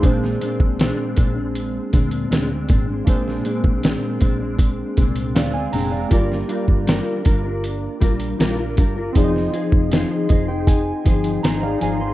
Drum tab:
HH |x-x-x-x-x-xxx-x-|x-x-x-x-x-xxx-o-|x-x-x-x-x-xxx-x-|x-x-x-x-x-xxx-x-|
SD |-o--o-------o---|-o--o-------o---|-o--o-------o---|-o--o-------o---|
BD |o--o--o---o---o-|o--o--o-o-o-----|o--o--o---o---o-|o--o--o-o-o-----|